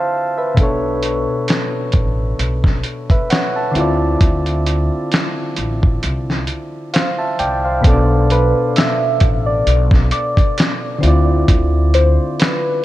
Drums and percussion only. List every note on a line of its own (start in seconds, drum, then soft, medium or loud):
0.57 kick medium
0.57 closed hi-hat medium
1.02 closed hi-hat medium
1.48 snare medium
1.48 closed hi-hat medium
1.92 kick medium
1.92 closed hi-hat medium
2.39 closed hi-hat medium
2.64 kick medium
2.64 snare soft
2.83 closed hi-hat medium
3.10 kick medium
3.10 closed hi-hat soft
3.30 snare medium
3.30 closed hi-hat medium
3.75 closed hi-hat medium
4.21 kick loud
4.21 closed hi-hat medium
4.46 closed hi-hat soft
4.66 closed hi-hat medium
5.12 snare loud
5.12 closed hi-hat medium
5.56 closed hi-hat medium
5.83 kick medium
6.03 closed hi-hat medium
6.30 snare soft
6.47 closed hi-hat medium
6.94 snare medium
6.94 closed hi-hat medium
7.39 closed hi-hat medium
7.84 kick loud
7.84 closed hi-hat medium
8.30 closed hi-hat medium
8.76 snare loud
8.76 closed hi-hat medium
9.20 kick medium
9.20 closed hi-hat medium
9.67 closed hi-hat medium
9.91 kick medium
9.91 snare soft
10.11 closed hi-hat medium
10.37 kick medium
10.37 closed hi-hat soft
10.58 snare loud
10.58 closed hi-hat medium
11.03 closed hi-hat medium
11.48 kick loud
11.48 closed hi-hat medium
11.94 closed hi-hat medium
12.40 snare loud
12.40 closed hi-hat medium